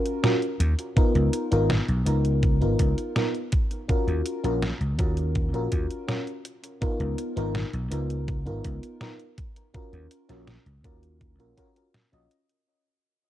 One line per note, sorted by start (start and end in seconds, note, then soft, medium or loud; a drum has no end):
0.00 0.19 C#4 medium
0.00 0.19 F4 medium
0.00 0.19 F#4 medium
0.00 0.20 A#4 medium
0.06 closed hi-hat medium
0.23 0.33 C#4 medium
0.23 0.33 F4 medium
0.23 0.34 F#4 medium
0.23 0.34 A#4 medium
0.23 snare loud
0.23 closed hi-hat medium
0.42 closed hi-hat soft
0.60 0.73 D#2 medium
0.60 closed hi-hat medium
0.79 closed hi-hat medium
0.96 1.47 B3 medium
0.96 1.47 D#4 medium
0.96 1.47 F4 medium
0.96 1.48 A#4 medium
0.96 muted slap bass stroke soft
0.96 kick loud
0.96 closed hi-hat medium
1.15 1.28 C#2 loud
1.15 closed hi-hat soft
1.33 closed hi-hat loud
1.51 1.78 G#1 medium
1.51 1.67 B3 medium
1.51 1.67 D#4 medium
1.51 1.68 F4 medium
1.51 1.68 A#4 loud
1.51 closed hi-hat soft
1.70 snare loud
1.70 closed hi-hat soft
1.88 2.01 B1 loud
1.88 closed hi-hat soft
2.06 2.63 C#2 medium
2.06 2.57 B3 medium
2.06 2.57 D#4 medium
2.06 2.57 F4 medium
2.06 2.58 A#4 medium
2.06 closed hi-hat medium
2.25 closed hi-hat medium
2.43 kick loud
2.43 closed hi-hat medium
2.61 2.74 G#1 medium
2.61 3.11 B3 medium
2.61 3.12 D#4 medium
2.61 3.12 F4 medium
2.61 3.12 A#4 medium
2.61 closed hi-hat soft
2.79 2.93 C#2 loud
2.79 kick medium
2.79 closed hi-hat medium
2.98 closed hi-hat medium
3.15 3.26 B3 medium
3.15 3.26 D#4 medium
3.15 3.26 F4 medium
3.15 3.27 A#4 medium
3.15 snare loud
3.15 closed hi-hat medium
3.35 closed hi-hat soft
3.52 kick loud
3.52 closed hi-hat medium
3.71 closed hi-hat medium
3.88 4.39 C#4 medium
3.88 4.40 F4 medium
3.88 4.40 F#4 medium
3.88 4.40 A#4 medium
3.88 muted slap bass stroke soft
3.88 kick loud
3.88 closed hi-hat medium
4.07 4.21 D#2 loud
4.07 closed hi-hat soft
4.26 closed hi-hat loud
4.43 4.70 A#1 medium
4.43 4.60 C#4 medium
4.43 4.60 F4 medium
4.43 4.60 F#4 medium
4.43 4.60 A#4 loud
4.43 closed hi-hat medium
4.62 snare loud
4.62 closed hi-hat medium
4.81 4.94 C#2 loud
4.81 closed hi-hat soft
4.98 5.54 D#2 medium
4.98 5.49 C#4 medium
4.98 5.49 F4 medium
4.98 5.50 F#4 medium
4.98 5.50 A#4 medium
4.98 kick loud
4.98 closed hi-hat medium
5.17 closed hi-hat medium
5.35 kick loud
5.35 closed hi-hat medium
5.53 5.67 A#1 medium
5.53 6.04 C#4 medium
5.53 6.04 F4 medium
5.53 6.05 F#4 medium
5.53 6.05 A#4 medium
5.53 closed hi-hat soft
5.72 5.86 D#2 loud
5.72 kick medium
5.72 closed hi-hat medium
5.91 closed hi-hat medium
6.08 6.18 C#4 medium
6.08 6.18 F4 medium
6.08 6.19 F#4 medium
6.08 6.19 A#4 medium
6.08 snare loud
6.08 closed hi-hat medium
6.27 closed hi-hat soft
6.45 closed hi-hat medium
6.64 closed hi-hat medium
6.81 7.32 B3 medium
6.81 7.32 D#4 medium
6.81 7.33 F4 medium
6.81 7.33 A#4 medium
6.81 muted slap bass stroke soft
6.81 kick loud
6.81 closed hi-hat medium
7.00 7.13 C#2 loud
7.00 closed hi-hat soft
7.18 closed hi-hat loud
7.36 7.63 G#1 medium
7.36 7.52 B3 medium
7.36 7.52 D#4 medium
7.36 7.53 F4 medium
7.36 7.53 A#4 loud
7.36 closed hi-hat soft
7.55 snare loud
7.55 closed hi-hat medium
7.73 7.86 B1 loud
7.73 closed hi-hat soft
7.91 8.48 C#2 medium
7.91 8.42 B3 medium
7.91 8.42 D#4 medium
7.91 8.42 F4 medium
7.91 8.43 A#4 medium
7.91 closed hi-hat medium
8.10 closed hi-hat medium
8.28 kick loud
8.28 closed hi-hat medium
8.46 8.59 G#1 medium
8.46 8.96 B3 medium
8.46 8.97 D#4 medium
8.46 8.97 F4 medium
8.46 8.97 A#4 medium
8.46 closed hi-hat soft
8.64 8.78 C#2 loud
8.64 kick medium
8.64 closed hi-hat medium
8.83 closed hi-hat medium
9.00 9.11 B3 medium
9.00 9.11 D#4 medium
9.00 9.12 F4 medium
9.00 9.12 A#4 loud
9.00 snare loud
9.00 closed hi-hat medium
9.20 closed hi-hat soft
9.38 kick loud
9.38 closed hi-hat medium
9.56 closed hi-hat medium
9.74 10.25 C#4 medium
9.74 10.25 F4 medium
9.74 10.25 F#4 medium
9.74 10.26 A#4 medium
9.74 muted slap bass stroke soft
9.74 kick loud
9.74 closed hi-hat medium
9.93 10.06 D#2 loud
9.93 closed hi-hat soft
10.11 closed hi-hat loud
10.29 10.56 A#1 medium
10.29 10.45 C#4 loud
10.29 10.45 F4 medium
10.29 10.45 F#4 medium
10.29 10.46 A#4 loud
10.29 snare soft
10.29 closed hi-hat medium
10.48 snare loud
10.48 closed hi-hat medium
10.66 10.79 C#2 loud
10.66 closed hi-hat soft
10.84 11.39 D#2 medium
10.84 11.35 C#4 medium
10.84 11.35 F4 medium
10.84 11.35 F#4 medium
10.84 11.35 A#4 medium
10.84 kick loud
10.84 closed hi-hat medium
11.03 closed hi-hat medium
11.21 kick loud
11.21 closed hi-hat medium
11.39 11.52 A#1 medium
11.39 11.54 C#4 medium
11.39 11.54 F4 medium
11.39 11.54 F#4 medium
11.39 11.54 A#4 medium
11.39 closed hi-hat soft
11.57 11.67 C#4 loud
11.57 11.68 F4 medium
11.57 11.68 F#4 medium
11.57 11.68 A#4 loud
11.57 kick medium
11.57 closed hi-hat medium
11.76 11.86 C#4 medium
11.76 11.86 F4 medium
11.76 11.86 F#4 medium
11.76 11.87 A#4 medium
11.76 closed hi-hat medium
11.94 snare loud
11.94 closed hi-hat medium
12.12 12.26 A#1 medium
12.12 12.28 C#4 medium
12.12 12.28 F4 medium
12.12 12.28 F#4 medium
12.12 12.29 D#5 loud
12.12 closed hi-hat soft
12.31 closed hi-hat loud
12.49 closed hi-hat medium